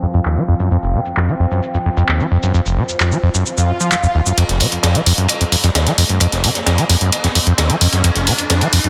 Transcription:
0.00 0.06 F2 medium
0.00 4.42 F3 medium
0.00 4.42 C4 medium
0.14 0.20 F2 medium
0.14 shaker medium
0.25 0.39 D#2 medium
0.25 clap loud
0.25 shaker soft
0.37 0.43 F3 loud
0.37 shaker soft
0.48 0.55 F2 loud
0.60 0.69 F#2 medium
0.60 shaker medium
0.71 0.78 F2 loud
0.71 shaker soft
0.83 0.96 F1 medium
0.83 shaker soft
0.94 1.01 C3 loud
1.06 shaker medium
1.17 1.30 F2 medium
1.17 clap loud
1.17 shaker soft
1.29 1.35 F3 loud
1.29 shaker soft
1.40 1.46 F2 loud
1.51 1.61 F#2 medium
1.51 shaker medium
1.63 shaker soft
1.74 1.78 F2 medium
1.74 shaker soft
1.86 1.90 F2 medium
1.97 2.04 F2 medium
1.97 shaker medium
2.09 2.22 D#2 medium
2.09 clap loud
2.09 shaker soft
2.20 2.26 F3 loud
2.20 shaker soft
2.32 2.38 F2 loud
2.43 2.52 F#2 medium
2.43 shaker medium
2.54 2.61 F2 loud
2.54 shaker medium
2.66 2.79 F1 medium
2.66 shaker soft
2.77 2.84 C3 loud
2.89 shaker medium
3.00 3.13 F2 medium
3.00 clap loud
3.00 shaker medium
3.12 3.18 F3 loud
3.12 shaker soft
3.23 3.29 F2 loud
3.35 3.44 F#2 medium
3.35 shaker medium
3.46 swell medium
3.46 shaker medium
3.58 3.70 F2 medium
3.58 shaker soft
3.69 3.73 F#2 medium
3.80 3.90 F3 medium
3.80 shaker medium
3.92 3.96 F3 medium
3.92 clap loud
3.92 shaker medium
4.03 4.07 F2 loud
4.03 shaker soft
4.15 4.21 D#2 loud
4.26 4.32 F#2 medium
4.26 shaker medium
4.38 4.44 F2 loud
4.38 closed hi-hat medium
4.38 ride medium
4.38 riser medium
4.49 4.62 F1 medium
4.49 snare soft
4.49 closed hi-hat medium
4.60 4.67 C3 loud
4.60 open hi-hat loud
4.60 ride medium
4.72 closed hi-hat medium
4.72 ride soft
4.83 4.97 F2 medium
4.83 snare loud
4.83 closed hi-hat medium
4.83 ride medium
4.95 5.01 F3 loud
4.95 closed hi-hat medium
5.06 5.13 F2 loud
5.06 open hi-hat loud
5.06 ride medium
5.18 5.27 F#2 medium
5.18 closed hi-hat medium
5.28 closed hi-hat loud
5.28 ride loud
5.41 5.45 F2 medium
5.41 closed hi-hat medium
5.52 5.56 F2 medium
5.52 open hi-hat loud
5.52 ride medium
5.63 5.70 F2 medium
5.63 snare soft
5.63 closed hi-hat medium
5.75 5.88 D#2 medium
5.75 snare loud
5.75 closed hi-hat medium
5.75 ride medium
5.87 5.93 F3 loud
5.87 snare soft
5.87 closed hi-hat medium
5.98 6.04 F2 loud
5.98 open hi-hat loud
5.98 ride medium
6.09 6.19 F#2 medium
6.09 closed hi-hat medium
6.09 ride soft
6.20 6.27 F2 loud
6.20 closed hi-hat loud
6.20 ride medium
6.32 6.45 F1 medium
6.32 snare soft
6.32 closed hi-hat medium
6.44 6.50 C3 loud
6.44 open hi-hat loud
6.44 ride medium
6.55 snare soft
6.55 closed hi-hat medium
6.66 6.80 F2 medium
6.66 snare loud
6.66 closed hi-hat medium
6.66 ride medium
6.78 6.84 F3 loud
6.78 closed hi-hat medium
6.78 ride soft
6.89 6.96 F2 loud
6.89 snare medium
6.89 open hi-hat loud
6.89 ride medium
7.01 7.10 F#2 medium
7.01 closed hi-hat medium
7.12 closed hi-hat medium
7.12 ride medium
7.24 7.28 F2 medium
7.24 snare soft
7.24 closed hi-hat medium
7.35 7.39 F2 medium
7.35 open hi-hat loud
7.35 ride medium
7.47 7.53 F2 loud
7.47 closed hi-hat medium
7.58 7.71 D#2 medium
7.58 snare loud
7.58 closed hi-hat medium
7.58 ride medium
7.70 7.76 F3 loud
7.70 closed hi-hat medium
7.81 7.87 F2 loud
7.81 open hi-hat loud
7.81 ride medium
7.93 8.02 F#2 medium
7.93 snare soft
7.93 closed hi-hat medium
8.04 8.10 F2 loud
8.04 closed hi-hat medium
8.04 ride medium
8.15 8.28 F1 medium
8.15 snare soft
8.15 closed hi-hat medium
8.27 8.33 C3 loud
8.27 open hi-hat loud
8.27 ride medium
8.38 closed hi-hat medium
8.38 ride soft
8.50 8.63 F2 medium
8.50 snare loud
8.50 closed hi-hat medium
8.50 ride medium
8.61 8.68 F3 loud
8.61 closed hi-hat medium
8.73 8.79 F2 loud
8.73 open hi-hat loud
8.73 ride medium
8.84 8.89 F#2 medium
8.84 closed hi-hat medium

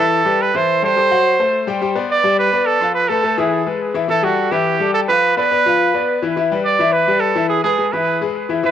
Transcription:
0.00 0.20 E3 medium
0.00 0.20 E4 medium
0.00 0.43 A4 medium
0.00 0.20 E5 medium
0.25 0.48 G3 medium
0.25 0.49 G4 medium
0.25 0.49 B4 medium
0.41 0.57 B4 medium
0.54 0.77 E3 medium
0.54 0.77 E4 medium
0.54 0.83 C5 medium
0.54 0.78 E5 medium
0.82 0.94 G3 medium
0.82 0.94 G4 medium
0.82 0.94 A4 medium
0.82 1.65 C5 loud
0.96 1.08 G3 medium
0.96 1.08 G4 medium
0.96 1.08 A4 medium
1.11 1.34 F#3 medium
1.11 1.35 F#4 medium
1.11 1.35 F#5 medium
1.40 1.63 A3 medium
1.40 1.63 A4 medium
1.40 1.63 C5 medium
1.67 1.79 G3 medium
1.67 1.79 G4 medium
1.67 1.80 G5 medium
1.82 1.93 G3 medium
1.82 1.94 G4 medium
1.82 1.94 G5 medium
1.96 2.19 B3 medium
1.96 2.19 B4 medium
1.96 2.19 D5 medium
2.11 2.37 D5 medium
2.24 2.48 G3 medium
2.24 2.48 G4 medium
2.24 2.48 G5 medium
2.39 2.68 B4 loud
2.53 2.76 B3 medium
2.53 2.76 B4 medium
2.53 2.76 D5 medium
2.66 2.94 A4 medium
2.81 3.04 F3 medium
2.81 3.05 F4 medium
2.81 3.05 F5 medium
2.94 3.10 B4 medium
3.08 3.21 A3 medium
3.08 3.40 A4 medium
3.08 3.21 A4 medium
3.08 3.22 B4 medium
3.24 3.35 A3 medium
3.24 3.36 A4 medium
3.24 3.36 B4 medium
3.38 3.61 E3 medium
3.38 3.61 E4 medium
3.38 3.67 G#4 medium
3.38 3.62 E5 medium
3.66 3.90 G#3 medium
3.66 3.90 G#4 medium
3.66 3.90 B4 medium
3.94 4.06 E3 medium
3.94 4.06 E4 medium
3.94 4.07 E5 medium
4.08 4.20 E3 medium
4.08 4.21 E4 medium
4.08 4.25 A4 medium
4.08 4.21 E5 medium
4.22 4.46 G3 medium
4.22 4.53 F#4 medium
4.22 4.46 G4 medium
4.22 4.47 A4 medium
4.51 4.75 E3 medium
4.51 4.75 E4 medium
4.51 4.94 G4 medium
4.51 4.75 E5 medium
4.80 5.03 G3 medium
4.80 5.03 G4 medium
4.80 5.04 A4 medium
4.94 5.01 A4 medium
5.08 5.32 F3 medium
5.08 5.32 F4 medium
5.08 5.35 B4 loud
5.08 5.32 F5 medium
5.37 5.49 B3 medium
5.37 5.49 B4 medium
5.37 6.18 B4 loud
5.37 5.49 D5 medium
5.51 5.63 B3 medium
5.51 5.63 B4 medium
5.51 5.63 D5 medium
5.65 5.89 F3 medium
5.65 5.89 F4 medium
5.65 5.89 F5 medium
5.94 6.17 B3 medium
5.94 6.17 B4 medium
5.94 6.17 D5 medium
6.22 6.34 E3 medium
6.22 6.34 E4 medium
6.22 6.34 E5 medium
6.36 6.48 E3 medium
6.36 6.48 E4 medium
6.36 6.48 E5 medium
6.51 6.74 G3 medium
6.51 6.74 G4 medium
6.51 6.75 B4 medium
6.65 6.94 D5 medium
6.79 7.02 E3 medium
6.79 7.02 E4 medium
6.79 7.03 E5 medium
6.92 7.22 B4 medium
7.07 7.31 G3 medium
7.07 7.31 G4 medium
7.07 7.31 B4 medium
7.20 7.49 A4 medium
7.35 7.59 E3 medium
7.35 7.59 E4 medium
7.35 7.59 E5 medium
7.49 7.63 G#4 medium
7.64 7.76 G#3 medium
7.64 7.94 G#4 medium
7.64 7.76 G#4 medium
7.64 7.76 B4 medium
7.78 7.90 G#3 medium
7.78 7.90 G#4 medium
7.78 7.90 B4 medium
7.92 8.16 E3 medium
7.92 8.16 E4 medium
7.92 8.21 B4 medium
7.92 8.16 E5 medium
8.21 8.44 G#3 medium
8.21 8.44 G#4 medium
8.21 8.44 B4 medium
8.49 8.61 E3 medium
8.49 8.61 E4 medium
8.49 8.61 E5 medium
8.63 8.71 E3 medium
8.63 8.71 E4 medium
8.63 8.71 B4 medium
8.63 8.71 E5 medium

